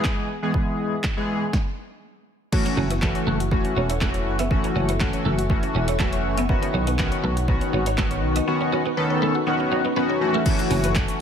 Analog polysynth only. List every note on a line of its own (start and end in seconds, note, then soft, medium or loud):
0.00 0.27 E3 medium
0.00 0.28 G#3 medium
0.00 0.28 B3 medium
0.00 0.28 G#4 loud
0.42 0.95 E3 medium
0.42 0.95 G#3 medium
0.42 0.95 B3 medium
0.42 0.95 G#4 medium
1.17 1.43 E3 medium
1.17 1.43 G#3 medium
1.17 1.43 B3 medium
1.17 1.43 G#4 loud
2.52 2.88 E3 medium
2.52 2.88 A3 medium
2.52 2.88 C#4 medium
2.52 2.88 F#4 loud
3.02 3.38 E3 medium
3.02 3.38 A3 medium
3.02 3.38 C#4 medium
3.02 3.38 F#4 loud
3.51 3.87 E3 medium
3.51 3.88 A3 medium
3.51 3.88 C#4 medium
3.51 3.88 F#4 loud
4.01 4.37 E3 medium
4.01 4.37 A3 medium
4.01 4.37 C#4 medium
4.01 4.37 F#4 medium
4.51 4.87 E3 medium
4.51 4.87 A3 medium
4.51 4.87 C#4 medium
4.51 4.87 F#4 loud
5.00 5.36 E3 loud
5.00 5.36 A3 medium
5.00 5.36 C#4 medium
5.00 5.36 F#4 loud
5.50 5.86 E3 medium
5.50 5.86 A3 medium
5.50 5.86 C#4 medium
5.50 5.86 F#4 loud
5.99 6.35 E3 medium
5.99 6.35 A3 medium
5.99 6.35 C#4 medium
5.99 6.36 F#4 loud
6.49 6.85 D#3 medium
6.49 6.85 B3 medium
6.49 6.85 C#4 medium
6.49 6.85 F#4 loud
6.98 7.34 D#3 medium
6.98 7.35 B3 medium
6.98 7.35 C#4 medium
6.98 7.35 F#4 loud
7.48 7.84 D#3 medium
7.48 7.84 B3 medium
7.48 7.84 C#4 medium
7.48 7.84 F#4 loud
7.98 8.34 D#3 medium
7.98 8.34 B3 medium
7.98 8.34 C#4 medium
7.98 8.34 F#4 medium
8.47 8.83 D#3 medium
8.47 8.83 B3 medium
8.47 8.83 C#4 medium
8.47 8.83 F#4 loud
8.97 9.33 D#3 loud
8.97 9.33 B3 medium
8.97 9.33 C#4 medium
8.97 9.33 A4 loud
9.46 9.82 D#3 medium
9.46 9.82 B3 medium
9.46 9.83 C#4 medium
9.46 9.83 F#4 loud
9.96 10.21 D#3 medium
9.96 10.21 B3 medium
9.96 10.20 C#4 medium
9.96 10.20 F#4 medium
10.21 10.41 E3 medium
10.21 10.41 A3 medium
10.21 10.41 C#4 medium
10.21 10.41 F#4 loud
10.46 11.16 E3 medium
10.46 11.16 A3 medium
10.46 11.17 C#4 medium
10.46 11.17 F#4 loud